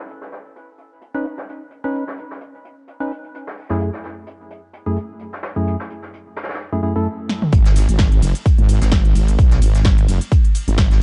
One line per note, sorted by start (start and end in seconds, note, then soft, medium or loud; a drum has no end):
0.09 closed hi-hat medium
0.21 snare soft
0.32 snare soft
0.32 closed hi-hat medium
0.56 closed hi-hat medium
0.78 closed hi-hat medium
1.01 closed hi-hat medium
1.14 1.26 C#4 medium
1.14 1.26 D#4 medium
1.14 1.26 B4 medium
1.25 closed hi-hat medium
1.37 snare soft
1.49 closed hi-hat medium
1.70 closed hi-hat medium
1.84 2.04 C#4 medium
1.84 2.04 D#4 medium
1.84 2.04 B4 medium
1.94 closed hi-hat medium
2.07 snare medium
2.17 closed hi-hat medium
2.31 snare soft
2.41 closed hi-hat medium
2.65 closed hi-hat medium
2.87 closed hi-hat medium
3.00 3.12 C#4 medium
3.00 3.12 D#4 medium
3.00 3.12 B4 medium
3.11 closed hi-hat medium
3.23 closed hi-hat soft
3.34 closed hi-hat medium
3.47 snare medium
3.58 open hi-hat medium
3.69 3.90 F#2 medium
3.69 3.90 A3 medium
3.69 3.90 E4 medium
3.69 3.90 G#4 medium
3.69 snare medium
3.80 closed hi-hat medium
3.93 snare soft
4.03 snare soft
4.03 closed hi-hat medium
4.26 closed hi-hat medium
4.50 closed hi-hat medium
4.73 closed hi-hat medium
4.86 4.98 F#2 medium
4.86 4.98 A3 medium
4.86 4.98 E4 medium
4.86 4.98 G#4 medium
4.96 closed hi-hat medium
5.19 closed hi-hat medium
5.33 snare soft
5.43 snare medium
5.43 closed hi-hat medium
5.56 5.76 F#2 medium
5.56 5.76 A3 medium
5.56 5.76 E4 medium
5.56 5.76 G#4 medium
5.67 closed hi-hat medium
5.80 snare medium
5.90 closed hi-hat medium
6.02 snare soft
6.13 closed hi-hat medium
6.36 snare medium
6.36 closed hi-hat medium
6.43 snare medium
6.43 closed hi-hat medium
6.49 snare medium
6.49 closed hi-hat medium
6.54 snare medium
6.54 closed hi-hat medium
6.72 6.81 F#2 medium
6.72 6.81 A3 medium
6.72 6.81 E4 medium
6.72 6.81 G#4 medium
6.83 6.94 F#2 medium
6.83 6.94 A3 medium
6.83 6.94 E4 medium
6.83 6.94 G#4 medium
6.96 7.07 F#2 medium
6.96 7.07 A3 medium
6.96 7.07 E4 medium
6.96 7.07 A4 loud
7.29 snare medium
7.42 mid tom medium
7.52 7.87 G#1 loud
7.52 kick loud
7.52 closed hi-hat medium
7.52 cabasa soft
7.65 snare soft
7.65 closed hi-hat medium
7.76 snare soft
7.76 closed hi-hat medium
7.76 open hi-hat loud
7.76 ride medium
7.76 cabasa medium
7.89 8.21 G#1 medium
7.89 closed hi-hat medium
7.89 cabasa soft
7.99 kick loud
7.99 snare loud
7.99 closed hi-hat medium
7.99 cabasa soft
8.12 closed hi-hat medium
8.22 8.33 F#1 loud
8.22 closed hi-hat medium
8.22 open hi-hat medium
8.22 ride medium
8.22 cabasa medium
8.35 closed hi-hat medium
8.35 cabasa soft
8.46 kick loud
8.46 closed hi-hat medium
8.46 cabasa soft
8.58 8.80 G#1 loud
8.58 closed hi-hat soft
8.69 closed hi-hat medium
8.69 open hi-hat loud
8.69 ride medium
8.69 cabasa medium
8.81 9.14 G#1 loud
8.81 snare medium
8.81 closed hi-hat medium
8.81 cabasa soft
8.92 kick loud
8.92 snare loud
8.92 closed hi-hat medium
8.92 cabasa soft
9.05 closed hi-hat soft
9.15 9.37 G#1 loud
9.15 closed hi-hat medium
9.15 open hi-hat medium
9.15 ride medium
9.15 cabasa medium
9.28 closed hi-hat medium
9.28 cabasa soft
9.39 9.60 B1 medium
9.39 kick loud
9.39 closed hi-hat medium
9.39 cabasa soft
9.52 snare medium
9.52 closed hi-hat medium
9.62 10.07 G#1 loud
9.62 closed hi-hat medium
9.62 open hi-hat loud
9.62 ride medium
9.62 cabasa medium
9.75 snare soft
9.75 closed hi-hat medium
9.75 cabasa soft
9.85 kick loud
9.85 snare loud
9.85 closed hi-hat medium
9.85 cabasa soft
9.98 closed hi-hat medium
10.08 10.19 F#1 loud
10.08 closed hi-hat medium
10.08 open hi-hat loud
10.08 ride medium
10.08 cabasa medium
10.21 closed hi-hat medium
10.21 cabasa soft
10.31 kick loud
10.31 closed hi-hat medium
10.31 cabasa soft
10.45 closed hi-hat soft
10.55 closed hi-hat medium
10.55 open hi-hat loud
10.55 ride medium
10.55 cabasa medium
10.68 11.00 G#1 loud
10.68 closed hi-hat soft
10.68 closed hi-hat medium
10.68 cabasa soft
10.78 kick loud
10.78 snare loud
10.78 closed hi-hat medium
10.78 cabasa soft
10.91 snare medium
10.91 closed hi-hat soft